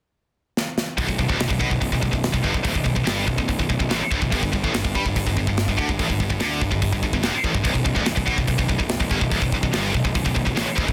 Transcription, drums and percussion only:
0.57 snare
0.78 snare
0.98 kick, open hi-hat
1.09 kick
1.19 kick
1.30 kick
1.40 snare, open hi-hat
1.50 kick
1.61 kick
1.71 kick
1.82 kick, open hi-hat
1.92 kick
2.03 kick
2.13 kick
2.24 snare, open hi-hat
2.34 kick
2.44 kick
2.54 kick
2.65 kick, open hi-hat
2.75 kick
2.86 kick
2.96 kick
3.07 snare, open hi-hat
3.28 kick
3.38 kick
3.49 kick, open hi-hat
3.59 kick
3.70 kick
3.80 kick
3.91 snare, open hi-hat
4.12 kick
4.22 kick
4.32 kick, open hi-hat
4.43 kick
4.53 kick
4.64 kick
4.74 snare, open hi-hat
4.85 kick
4.95 kick
5.06 kick
5.16 kick, open hi-hat
5.27 kick
5.37 kick
5.47 kick
5.57 snare, open hi-hat
5.68 kick
5.79 kick
5.89 kick
5.99 kick, open hi-hat
6.10 kick
6.20 kick
6.30 kick
6.40 snare, open hi-hat
6.61 kick
6.72 kick
6.82 kick, open hi-hat
6.92 kick
7.03 kick
7.13 kick
7.23 snare, open hi-hat
7.44 kick
7.55 kick
7.65 kick, open hi-hat
7.75 kick
7.86 kick
7.96 kick
8.06 snare, open hi-hat
8.17 kick
8.28 kick
8.38 kick
8.48 kick, open hi-hat
8.59 kick
8.69 kick
8.80 kick
8.89 snare, open hi-hat
9.00 kick
9.11 kick
9.21 kick
9.31 kick, open hi-hat
9.42 kick
9.52 kick
9.63 kick
9.73 snare, open hi-hat
9.94 kick
10.05 kick
10.15 kick, open hi-hat
10.26 kick
10.36 kick
10.47 kick
10.57 snare, open hi-hat
10.78 kick
10.88 kick

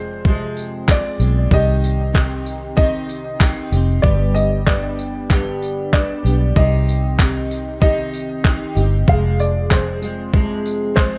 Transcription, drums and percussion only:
0.25 kick
0.57 tambourine
0.88 kick, clap
1.20 tambourine
1.51 kick
1.84 tambourine
2.15 kick, clap
2.46 tambourine
2.77 kick
3.09 tambourine
3.40 kick, clap
3.73 tambourine
4.04 kick
4.36 tambourine
4.67 kick, clap
4.99 tambourine
5.30 kick, clap
5.62 tambourine
5.93 kick, clap
6.26 tambourine
6.56 kick
6.89 tambourine
7.19 kick, clap
7.51 tambourine
7.82 kick
8.14 tambourine
8.45 kick, clap
8.76 tambourine
9.08 kick
9.39 tambourine
9.71 kick, clap
10.03 tambourine
10.34 kick
10.66 tambourine
10.97 kick, clap

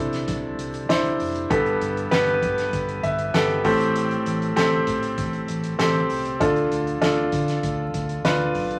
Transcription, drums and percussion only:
0.13 snare, closed hi-hat
0.28 kick, closed hi-hat
0.59 closed hi-hat
0.74 closed hi-hat
0.90 snare, closed hi-hat
1.05 closed hi-hat
1.20 open hi-hat
1.36 closed hi-hat
1.51 kick, closed hi-hat
1.66 closed hi-hat
1.82 closed hi-hat
1.97 closed hi-hat
2.12 snare, closed hi-hat
2.27 closed hi-hat
2.42 kick, closed hi-hat
2.58 snare, closed hi-hat
2.73 kick, closed hi-hat
2.89 closed hi-hat
3.04 kick, closed hi-hat
3.19 closed hi-hat
3.34 snare, closed hi-hat
3.65 kick, open hi-hat
3.80 closed hi-hat
3.96 closed hi-hat
4.11 closed hi-hat
4.26 closed hi-hat
4.42 closed hi-hat
4.57 snare, closed hi-hat
4.87 kick, closed hi-hat
5.03 closed hi-hat
5.18 kick, closed hi-hat
5.33 closed hi-hat
5.48 closed hi-hat
5.64 closed hi-hat
5.79 snare, closed hi-hat
5.95 closed hi-hat
6.10 open hi-hat
6.25 closed hi-hat
6.41 kick, closed hi-hat
6.56 closed hi-hat
6.72 closed hi-hat
6.87 closed hi-hat
7.02 snare, closed hi-hat
7.32 kick, closed hi-hat
7.48 snare, closed hi-hat
7.63 kick, closed hi-hat
7.94 kick, closed hi-hat
8.09 closed hi-hat
8.25 snare, closed hi-hat
8.55 kick, open hi-hat
8.71 closed hi-hat

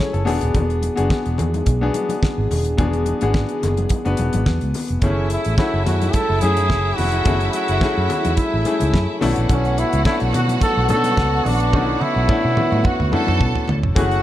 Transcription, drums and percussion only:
0.14 closed hi-hat
0.27 open hi-hat, low conga
0.41 closed hi-hat
0.55 kick, closed hi-hat, muted conga, low conga
0.70 closed hi-hat
0.82 closed hi-hat, muted conga, high conga
0.97 closed hi-hat
1.10 kick, snare
1.26 closed hi-hat
1.38 closed hi-hat, low conga
1.54 closed hi-hat, high conga
1.66 kick, closed hi-hat, high conga
1.94 closed hi-hat, muted conga, high conga
2.09 closed hi-hat, high conga
2.22 kick, snare, muted conga
2.51 open hi-hat, low conga
2.65 closed hi-hat
2.78 kick, closed hi-hat, low conga
2.93 closed hi-hat
3.06 closed hi-hat, muted conga, high conga
3.21 closed hi-hat
3.34 kick, snare, muted conga
3.49 closed hi-hat
3.63 snare, closed hi-hat, muted conga, low conga
3.77 closed hi-hat, high conga
3.89 kick, closed hi-hat, high conga
4.05 closed hi-hat
4.17 closed hi-hat, muted conga, high conga
4.33 closed hi-hat, high conga
4.46 kick, snare, muted conga
4.61 closed hi-hat
4.74 open hi-hat, muted conga, low conga
4.88 closed hi-hat
5.02 kick, closed hi-hat, muted conga, low conga
5.30 closed hi-hat, muted conga
5.45 closed hi-hat
5.58 kick, snare, muted conga
5.86 snare, closed hi-hat, muted conga, low conga
6.02 closed hi-hat, high conga
6.13 kick, closed hi-hat, muted conga, high conga
6.41 closed hi-hat, muted conga, high conga
6.57 closed hi-hat, high conga
6.70 kick, snare
6.98 open hi-hat, low conga
7.12 closed hi-hat
7.25 kick, closed hi-hat, muted conga, low conga
7.41 closed hi-hat
7.53 closed hi-hat, muted conga
7.68 closed hi-hat
7.81 kick, snare, muted conga
8.09 closed hi-hat, muted conga, low conga
8.25 closed hi-hat, high conga
8.37 kick, closed hi-hat, high conga
8.65 closed hi-hat, muted conga, high conga
8.80 closed hi-hat, high conga
8.94 kick, snare
9.21 open hi-hat, low conga
9.36 closed hi-hat
9.49 kick, closed hi-hat, muted conga, low conga
9.65 closed hi-hat
9.77 closed hi-hat, muted conga
9.93 closed hi-hat
10.05 kick, snare, muted conga
10.20 closed hi-hat
10.33 closed hi-hat, muted conga, low conga
10.48 closed hi-hat, high conga
10.60 kick, closed hi-hat, high conga
10.89 closed hi-hat, muted conga, high conga
11.04 closed hi-hat, high conga
11.17 kick, snare
11.45 open hi-hat, muted conga, low conga
11.60 closed hi-hat
11.73 kick, high tom, muted conga, low conga
12.01 high tom, muted conga, high conga
12.29 kick, mid tom
12.57 mid tom, low conga
12.72 high conga
12.84 kick, mid tom, muted conga, high conga
13.00 mid tom
13.12 mid tom, muted conga, high conga
13.27 mid tom, high conga
13.40 kick, floor tom, muted conga
13.55 floor tom
13.68 floor tom, muted conga, low conga
13.83 floor tom
13.96 kick, closed hi-hat, low conga
14.11 closed hi-hat

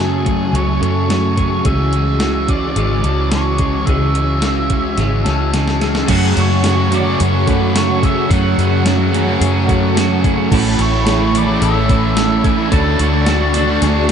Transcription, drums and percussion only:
0.26 kick, closed hi-hat
0.55 closed hi-hat
0.83 closed hi-hat
1.10 snare, closed hi-hat
1.38 kick, closed hi-hat
1.65 kick, closed hi-hat
1.93 closed hi-hat
2.20 snare, closed hi-hat
2.48 kick, closed hi-hat
2.76 closed hi-hat
3.04 closed hi-hat
3.32 snare, closed hi-hat
3.58 kick, closed hi-hat
3.87 kick, closed hi-hat
4.15 closed hi-hat
4.42 snare, closed hi-hat
4.70 kick, closed hi-hat
4.98 snare, closed hi-hat
5.26 snare, closed hi-hat
5.54 snare, closed hi-hat
5.68 snare
5.81 snare, closed hi-hat
5.95 snare
6.08 kick, open hi-hat, crash
6.37 open hi-hat
6.64 snare, open hi-hat
6.92 open hi-hat
7.20 open hi-hat
7.47 kick, open hi-hat
7.76 snare, open hi-hat
8.03 kick, open hi-hat
8.31 kick, open hi-hat
8.59 open hi-hat
8.86 snare, open hi-hat
9.14 open hi-hat
9.42 open hi-hat
9.69 kick, open hi-hat
9.97 snare, open hi-hat
10.24 kick, open hi-hat
10.52 kick, crash
10.79 open hi-hat
11.07 snare, open hi-hat
11.35 open hi-hat
11.62 open hi-hat
11.89 kick, open hi-hat
12.17 snare, open hi-hat
12.44 kick, open hi-hat
12.72 kick, open hi-hat
12.99 open hi-hat
13.26 snare, open hi-hat
13.54 snare, open hi-hat
13.82 snare, open hi-hat

